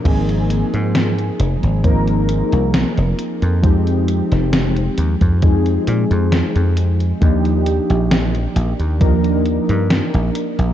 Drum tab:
CC |x---------------|----------------|----------------|
HH |xxxxxxxxxxxxxxxx|xxxxxxxxxxxxxxxx|xxxxxxxxxxxxxxxx|
SD |----o-------o---|---oo-------o---|----o-------o---|
BD |o-------o-------|o------oo-------|o-------o-------|